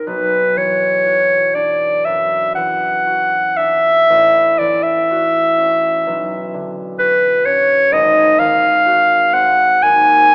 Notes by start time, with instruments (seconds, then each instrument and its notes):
Already playing: harp A#2 F#3 C4 D#4
0.07 harp B1, clarinet B4
0.57 harp E3, clarinet C#5
1.07 harp F#4
1.55 harp D4, clarinet D5
2.05 harp F#2, clarinet E5
2.55 harp E3, clarinet F#5
3.07 harp F#4
3.57 harp D4, clarinet E5
4.10 harp A1
4.59 harp E3, clarinet D5
4.83 clarinet E5
5.11 harp F#4
5.58 harp C#4
6.07 harp B1
6.54 harp D3
6.99 harp F#4, clarinet B4
7.46 harp C#4, clarinet C#5
7.92 harp G#1, clarinet D#5
8.39 harp D#3, clarinet F5
8.86 harp F#4
9.33 harp C4, clarinet F#5
9.83 harp D#2, clarinet G#5